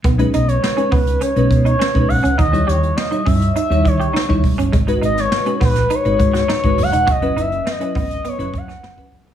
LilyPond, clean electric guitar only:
\new Staff \with { instrumentName = "Clean electric guitar" } { \time 4/4 \key b \major \tempo 4 = 102 b16 r16 dis'16 r8 cis'16 b16 r16 cis'16 r8 dis'16 cis'16 r8 cis'16 | dis'16 r16 g'16 r8 dis'16 cis'16 r16 dis'16 r8 g'16 dis'16 r8 cis'16 | gis16 r16 dis'16 r8 cis'16 b16 r16 dis'16 r8 fis'16 dis'16 r8 dis'16 | fis'16 r16 dis'16 r8 cis'16 b16 r16 b16 r8 cis'16 b16 r8 b16 | }